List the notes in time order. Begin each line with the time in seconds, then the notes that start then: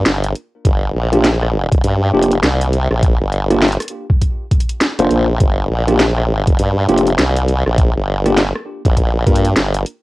0.06 G1, snare, closed hi-hat
0.24 closed hi-hat
0.35 closed hi-hat
0.65 G1, kick, closed hi-hat
0.95 A#1
1.13 A#3 D4 F4 G4, cross-stick, closed hi-hat
1.24 snare, closed hi-hat
1.42 cross-stick
1.72 kick, closed hi-hat
1.84 G2, closed hi-hat
2.13 F1 A#3 D4 F4 G4
2.23 closed hi-hat
2.32 closed hi-hat
2.43 C2, snare, closed hi-hat
2.61 closed hi-hat
2.73 closed hi-hat
2.91 A#1, cross-stick
3.03 kick, closed hi-hat
3.20 G1
3.32 closed hi-hat
3.50 A#3 D4 F4 G4, cross-stick, closed hi-hat
3.62 snare, closed hi-hat
3.68 closed hi-hat
3.72 closed hi-hat
3.80 cross-stick, closed hi-hat
3.82 closed hi-hat
3.88 closed hi-hat
4.10 kick
4.21 kick, closed hi-hat
4.51 kick, closed hi-hat
4.60 closed hi-hat
4.69 closed hi-hat
4.81 snare, closed hi-hat
4.99 F1 A#3 D4 F4 C5, closed hi-hat
5.11 A#1, closed hi-hat
5.40 G1, kick, closed hi-hat
5.70 A#1
5.88 A#3 D4 F4 G4, cross-stick, closed hi-hat
6.00 snare, closed hi-hat
6.18 cross-stick
6.47 kick, closed hi-hat
6.59 G2, closed hi-hat
6.89 F1 A#3 D4 F4 G4, closed hi-hat
6.98 closed hi-hat
7.07 closed hi-hat
7.19 C2, snare, closed hi-hat
7.37 closed hi-hat
7.48 closed hi-hat
7.66 A#1, cross-stick
7.78 kick, closed hi-hat
7.96 G1
8.26 A#3 D4 F4 G4, cross-stick, closed hi-hat
8.38 snare, closed hi-hat
8.56 cross-stick
8.85 A#1, kick, closed hi-hat
8.97 kick, closed hi-hat
9.27 G2 A#3 D4 F4 A#4, kick, closed hi-hat
9.36 closed hi-hat
9.45 closed hi-hat
9.56 G1, snare, closed hi-hat
9.74 closed hi-hat
9.86 closed hi-hat